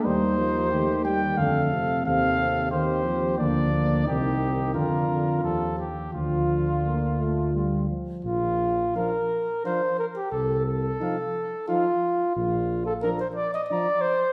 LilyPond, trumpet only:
\new Staff \with { instrumentName = "Trumpet" } { \time 3/4 \key bes \major \tempo 4 = 88 c''4. g''8 f''4 | f''4 c''4 d''4 | g'4 bes'4 a'8 g'8 | f'2~ f'8 r8 |
r4 f''4 f''4 | r4 f''4 f''4 | r4 bes''4 bes''4 | }